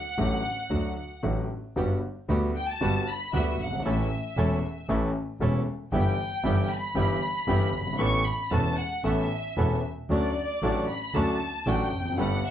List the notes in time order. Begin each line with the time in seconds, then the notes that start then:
Already playing: F#5
0.18 A1 A2 D3 F#3 A3 F#4
0.70 D2 D3 F#3 A3 F#4
1.23 A1 A2 D3 F#3 A3 F#4
1.76 G1 G2 D3 G3 B3 F#4 G4
2.28 D2 D3 G3 B3 F#4 G4
2.56 G5
2.69 A5
2.81 G1 G2 D3 G3 B3 F#4 G4
3.08 B5
3.33 D2 D3 G3 B3 F#4 G4 E5
3.60 G1 F#5
3.66 F#1
3.73 G1
3.79 G#1
3.85 A1 A2 E3 A3 C#4 E4 A4 E5
4.37 E1 E2 E3 A3 C#4 E4 A4
4.89 A1 A2 E3 A3 C#4 E4 A4
5.40 E1 E2 E3 A3 C#4 E4 A4
5.92 G1 G2 E3 G3 B3 E4 G4 G5
6.43 G1 G2 E3 G3 B3 E4 G4
6.70 B5
6.95 G1 G2 E3 G3 B3 E4 G4
7.47 G1 G2 E3 G3 B3 E4 G4
7.74 G1
7.81 F#1
7.87 G1
7.93 G#1
7.98 A1 A2 E3 B3 C#4 A4 C#6
8.25 B5
8.50 E1 E2 E3 B3 C#4 A4 A5
8.77 F#5
9.04 A1 A2 E3 B3 C#4 A4 E5
9.57 E1 E2 E3 B3 C#4 A4
10.09 D2 D3 F#3 C#4 D4 F#4 A4 D5
10.62 A1 A2 F#3 C#4 D4 F#4 A4
10.88 B5
11.14 D2 D3 F#3 C#4 D4 F#4 A4 A5
11.66 A1 A2 F#3 C#4 D4 F#4 A4 G5
11.93 F1
11.99 E2
12.05 F2
12.11 F#2
12.18 G1 G2 G3 A3 B3 D4 G4 A4 F#5
12.46 E5